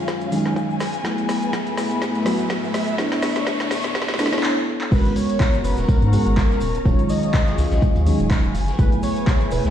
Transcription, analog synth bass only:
0.21 D#2
0.80 F#1
1.91 C#2
2.15 F#2
2.74 C#2
4.92 G#1
5.64 F#1
5.78 D#1
6.02 G#2
6.26 G#1
6.61 D#1
6.85 D#1
7.58 C#2
7.72 A#1
7.96 D#2
8.20 D#1
8.55 F#1
8.79 F#1
9.52 E1
9.65 C#2

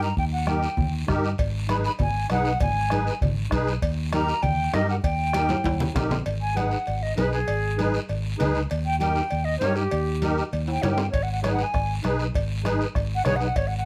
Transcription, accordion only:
0.47 D#4 G4 A#4
1.07 D#4 G4 A#4
1.69 D#4 G#4 B4
2.30 D#4 G#4 B4
2.91 D#4 G#4 B4
3.51 D#4 G#4 B4
4.13 D#4 G4 A#4
4.74 D#4 G4 A#4
5.34 D#4 G4 A#4
5.94 D#4 G4 A#4
6.56 D#4 G#4 B4
7.17 D#4 G#4 B4
7.78 D#4 G#4 B4
8.38 D#4 G#4 B4
9.00 D#4 G4 A#4
9.61 D#4 G4 A#4
10.22 D#4 G4 A#4
10.82 D#4 G4 A#4
11.43 D#4 G#4 B4
12.03 D#4 G#4 B4
12.64 D#4 G#4 B4
13.25 D#4 G#4 B4

